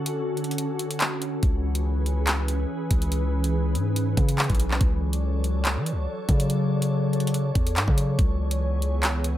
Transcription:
Already playing: D3 C#4 F#4 A4
0.06 closed hi-hat
0.37 closed hi-hat
0.44 closed hi-hat
0.51 closed hi-hat
0.58 closed hi-hat
0.79 closed hi-hat
0.91 closed hi-hat
1.01 clap, closed hi-hat
1.22 closed hi-hat
1.43 C#2 E3 G#4 B4, kick, closed hi-hat
1.75 closed hi-hat
2.06 closed hi-hat
2.27 clap, closed hi-hat
2.48 closed hi-hat
2.91 C#2, kick, closed hi-hat
3.02 closed hi-hat
3.12 closed hi-hat
3.44 closed hi-hat
3.75 G#2, closed hi-hat
3.96 closed hi-hat
4.17 C#3, kick, closed hi-hat
4.29 closed hi-hat
4.38 clap, closed hi-hat
4.44 closed hi-hat
4.50 B1, kick, closed hi-hat
4.55 closed hi-hat
4.60 closed hi-hat
4.71 clap
4.81 C#2 F#3 A4 C#5 D5, kick, closed hi-hat
5.13 closed hi-hat
5.44 closed hi-hat
5.65 clap, closed hi-hat
5.76 E3
5.86 closed hi-hat
5.92 C#2
6.29 C#3, kick, closed hi-hat
6.40 closed hi-hat
6.50 closed hi-hat
6.82 closed hi-hat
7.13 closed hi-hat
7.20 closed hi-hat
7.27 closed hi-hat
7.34 closed hi-hat
7.55 E2, kick, closed hi-hat
7.67 closed hi-hat
7.77 G#2, clap, closed hi-hat
7.88 C#3, kick
7.98 closed hi-hat
8.19 C#2 E3 B3 G#4, kick, closed hi-hat
8.51 closed hi-hat
8.82 closed hi-hat
9.03 clap, closed hi-hat
9.24 closed hi-hat

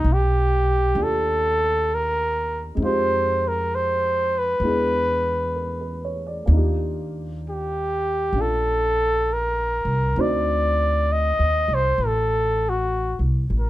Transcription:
Already playing: A#3 C4 D#4 G4 D5
0.04 B1
0.13 G4
0.95 D#2 D4 F4 G4
1.03 A4
1.94 A#4
2.75 F2 G#3 C4
2.80 D#4 F4
2.85 G4 C5
3.48 A#4
3.75 C5
4.38 B4
4.60 E2 G#3 B3
4.64 D4 E4 G#4
5.56 A#4
5.81 B4
6.04 C#5
6.27 D5
6.46 D#2 A#3 D4
6.52 D#4 F4
6.57 G4
7.50 G4
8.33 A#1 D4
8.38 F4 A4
9.33 A#4
9.85 C2
10.16 D2 C4 D4 D#4 F#4 C5
10.21 D5
11.12 D#5
11.39 D#2
11.68 C2
11.74 C5
11.98 A1
12.06 A4
12.69 F#4
13.19 C2
13.50 A1
13.60 A#4

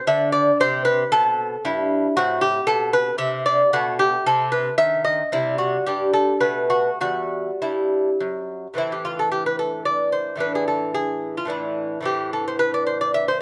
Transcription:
Already playing: C4
0.07 D3 E5
0.32 D5
0.60 C3 C4 C5
0.85 B4
1.12 B2 A4
1.65 G2 E4
2.17 A2 C4 F#4
2.41 G4
2.67 B2 A4
2.93 B4
3.18 C3 E5
3.46 D5
3.73 B2 A3 F#4
3.99 G4
4.26 C3 A4
4.52 B4
4.78 D#3 E5
5.05 D#5
5.32 C3 G3 E4
5.58 F#4
5.87 G2 G4
6.13 A4
6.41 B2 A3 B4
6.70 F#4
7.01 E2 G3 F#4
7.62 G2 E4
8.20 F#2
8.74 A2 E3 C4
8.78 E4
8.92 G4
9.05 F4
9.19 A4
9.32 G4
9.46 B4
9.59 A4
9.85 D5
10.12 C5
10.36 A2 E3 D4
10.40 B4
10.55 G#4
10.68 A4
10.94 G#4
11.37 F4
11.45 A2 E3 D4
11.50 E4
12.01 A2 E3 C4
12.05 G4
12.33 A4
12.48 C5
12.59 B4
12.74 D5
12.87 C5
13.01 D5
13.14 E5
13.28 C5

